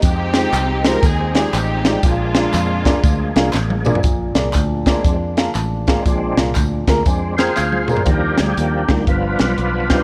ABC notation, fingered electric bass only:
X:1
M:4/4
L:1/8
Q:"Swing" 1/4=119
K:Bbmix
V:1 name="Fingered electric bass" clef=bass
F,,2 C,,2 E,,2 =A,,,2 | B,,,2 F,,2 D,, C,, =A,,,2 | B,,, C,, D,,2 F,,2 =A,,,2 | B,,, C,, D,, D,, F,,2 D,,2 |
E,, D,, E,, D,, G,,, =B,,, B,,,2 |]